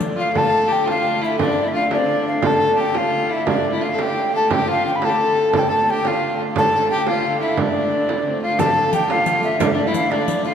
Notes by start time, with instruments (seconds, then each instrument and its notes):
Already playing: hurdy-gurdy D3 A3
0.00 riq
0.16 fiddle F4, recorder F5, frame drum
0.33 hurdy-gurdy D3 A3, fiddle A4, frame drum
0.37 recorder A5
0.68 fiddle G4
0.72 recorder G5
0.86 fiddle F4, frame drum
0.91 recorder F5
1.22 fiddle E4, recorder E5
1.39 fiddle D4, recorder D5, frame drum
1.64 fiddle E4, recorder E5
1.73 fiddle F4, recorder F5
1.89 fiddle D4, frame drum
1.94 fiddle C4, recorder D5
2.04 fiddle D4
2.09 frame drum
2.28 recorder F5
2.42 fiddle A4, frame drum
2.46 recorder A5
2.58 fiddle A4
2.76 fiddle G4
2.81 recorder G5
2.90 recorder G5
2.95 fiddle F4, recorder F5, frame drum
3.13 frame drum
3.30 fiddle E4, recorder E5
3.46 fiddle D4, frame drum
3.51 recorder D5
3.72 fiddle E4
3.76 recorder E5
3.81 fiddle F4, recorder F5, frame drum
3.92 fiddle A4
3.99 fiddle G4, recorder G5, frame drum
4.35 fiddle A4, recorder A5
4.50 hurdy-gurdy D3 A3, fiddle G4, recorder G5, frame drum
4.68 fiddle F4, recorder F5
4.87 recorder G5
4.96 recorder B5
5.02 fiddle A4, recorder A5, frame drum
5.09 fiddle G4
5.16 fiddle A4
5.20 frame drum
5.53 fiddle A4, recorder A5, frame drum
5.59 recorder G5
5.69 fiddle A4, recorder A5
5.90 fiddle G4, recorder G5
6.05 fiddle F4, recorder F5, frame drum
6.56 fiddle A4, recorder A5, frame drum
6.74 fiddle A4
6.91 fiddle G4, recorder G5
7.00 recorder G5
7.07 fiddle F4, recorder F5, frame drum
7.24 frame drum
7.41 fiddle E4, recorder E5
7.57 fiddle D4, recorder D5, frame drum
8.09 fiddle E4, frame drum
8.18 fiddle D4
8.27 fiddle C4
8.35 fiddle D4
8.42 fiddle F4, recorder F5
8.59 hurdy-gurdy D3 A3, fiddle A4, recorder A5, riq, frame drum
8.66 fiddle G4
8.71 fiddle A4
8.93 fiddle G4, recorder G5, riq
9.09 fiddle F4, recorder F5, frame drum
9.26 riq, frame drum
9.43 recorder E5, riq
9.60 fiddle D4, recorder D5, riq, frame drum
9.66 recorder E5
9.72 fiddle D4, recorder D5
9.86 fiddle E4, recorder E5
9.94 recorder F5, riq
10.11 fiddle D4, recorder D5, frame drum
10.28 riq, frame drum
10.44 fiddle F4, recorder F5, riq